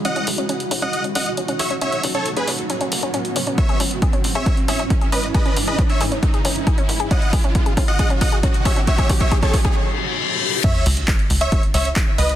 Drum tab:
CC |----------------|----------------|----------------|----------------|
HH |xxoxxxoxxxoxxxox|xxoxxxoxxxoxxxox|xxoxxxoxxxoxxxox|xxoxxxoxxxoxxxox|
CP |----------------|----------------|----------------|----------------|
BD |----------------|----------------|o---o---o---o---|o---o---o---o---|

CC |----------------|----------------|x---------------|
HH |xxoxxxoxxxoxxxox|xxoxxxox--------|xxoxxxoxxxoxx-ox|
CP |----------------|----------------|----x-------x---|
BD |o-o-o-o-o-o-o-o-|oooooooo--------|o---o---o---o---|